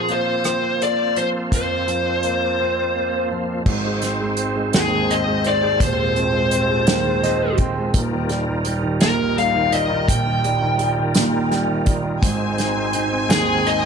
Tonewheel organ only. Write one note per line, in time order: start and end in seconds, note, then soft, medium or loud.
0.00 3.63 A#3 medium
0.00 3.62 C4 soft
0.00 3.63 F4 medium
0.00 3.63 C5 medium
3.67 7.91 G#3 medium
3.67 7.91 C4 medium
3.67 5.79 D#4 medium
3.67 7.91 C5 medium
5.81 12.19 F4 medium
7.96 12.19 G3 medium
7.96 13.85 D#4 medium
7.96 12.19 A#4 medium
12.23 13.85 G#3 medium
12.23 13.85 C4 medium
12.23 13.85 C5 medium